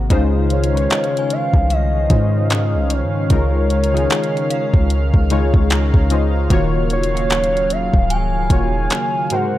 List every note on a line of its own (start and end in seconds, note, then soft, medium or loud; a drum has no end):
0.00 0.12 G#2 medium
0.00 0.11 G#3 medium
0.00 0.13 F#4 medium
0.00 0.12 A#4 medium
0.00 0.12 C5 medium
0.10 0.87 C#2 loud
0.10 0.62 C#3 loud
0.10 6.46 D#3 medium
0.10 0.62 G#3 loud
0.10 6.46 C#4 medium
0.10 0.63 D#4 loud
0.10 0.63 F4 loud
0.10 0.63 C5 loud
0.10 9.26 F5 medium
0.10 1.69 F5 medium
0.10 kick loud
0.10 closed hi-hat medium
0.50 1.34 C#5 loud
0.50 closed hi-hat medium
0.64 closed hi-hat medium
0.73 1.90 G#3 medium
0.73 1.90 C#4 medium
0.73 1.90 D#4 medium
0.73 1.91 F4 medium
0.73 0.80 B4 medium
0.77 closed hi-hat soft
0.82 1.94 C#5 medium
0.90 3.84 D#5 medium
0.90 clap loud
0.90 closed hi-hat soft
1.04 closed hi-hat soft
1.17 4.05 G#5 medium
1.17 closed hi-hat soft
1.30 1.74 F5 loud
1.30 closed hi-hat medium
1.54 2.08 C2 loud
1.54 kick medium
1.70 2.94 D#5 loud
1.70 4.49 F5 medium
1.70 closed hi-hat medium
2.10 2.76 G#2 medium
2.10 3.14 G#3 medium
2.10 3.14 C#4 medium
2.10 3.14 D#4 medium
2.10 3.14 F4 medium
2.10 3.15 C5 medium
2.10 kick medium
2.10 closed hi-hat medium
2.50 clap loud
2.50 closed hi-hat medium
2.74 3.04 C2 loud
2.90 6.11 C#5 medium
2.90 closed hi-hat medium
3.03 3.29 G#2 loud
3.30 4.07 C#2 loud
3.30 3.82 C#3 medium
3.30 3.82 G#3 medium
3.30 3.83 D#4 medium
3.30 3.83 F4 medium
3.30 3.83 A#4 loud
3.30 kick loud
3.30 closed hi-hat medium
3.70 closed hi-hat medium
3.84 closed hi-hat medium
3.93 5.10 C#3 medium
3.93 5.10 G#3 medium
3.93 5.11 D#4 medium
3.93 5.11 F4 medium
3.93 5.11 G#4 medium
3.93 closed hi-hat soft
4.10 clap loud
4.10 closed hi-hat soft
4.24 closed hi-hat soft
4.37 closed hi-hat soft
4.50 6.86 F5 medium
4.50 closed hi-hat medium
4.74 5.12 C#2 loud
4.74 kick medium
4.90 closed hi-hat medium
5.14 5.52 C#2 medium
5.14 kick medium
5.30 5.99 C#3 medium
5.30 6.00 G#3 medium
5.30 6.00 D#4 medium
5.30 6.00 F4 medium
5.30 6.01 C#5 loud
5.30 closed hi-hat medium
5.54 5.92 C#2 loud
5.54 kick loud
5.70 6.08 A#5 medium
5.70 clap loud
5.70 closed hi-hat medium
5.94 6.48 C#2 loud
5.94 kick medium
6.10 6.45 C#3 medium
6.10 6.45 G#3 medium
6.10 6.46 D#4 medium
6.10 6.46 F4 medium
6.10 6.46 C5 medium
6.10 6.48 D#5 medium
6.10 closed hi-hat medium
6.50 7.90 D#1 loud
6.50 9.28 C#3 medium
6.50 7.02 D#3 loud
6.50 9.27 F#3 medium
6.50 7.03 A#3 loud
6.50 7.03 F4 loud
6.50 7.03 F#4 loud
6.50 7.03 C#5 loud
6.50 kick loud
6.50 closed hi-hat medium
6.90 7.73 C#5 loud
6.90 closed hi-hat medium
7.03 closed hi-hat medium
7.14 8.30 D#3 medium
7.14 8.31 A#3 medium
7.14 8.31 F4 medium
7.14 8.31 F#4 medium
7.14 8.31 C#5 medium
7.14 closed hi-hat soft
7.30 clap loud
7.30 closed hi-hat soft
7.44 closed hi-hat soft
7.57 closed hi-hat soft
7.70 8.11 F5 loud
7.70 closed hi-hat medium
7.94 8.48 C#1 loud
7.94 kick medium
8.10 9.58 G#5 medium
8.10 9.34 G#5 loud
8.10 closed hi-hat medium
8.50 8.89 D#1 loud
8.50 9.30 D#3 medium
8.50 9.31 A#3 medium
8.50 9.31 F4 medium
8.50 9.31 F#4 medium
8.50 9.31 C#5 medium
8.50 kick medium
8.50 closed hi-hat medium
8.90 clap loud
8.90 closed hi-hat medium
9.30 9.58 G#2 medium
9.30 9.58 C3 medium
9.30 9.58 G#3 medium
9.30 9.58 A#3 medium
9.30 9.58 F#4 medium
9.30 9.58 A#4 medium
9.30 9.58 C5 medium
9.30 9.58 F#5 loud
9.30 closed hi-hat medium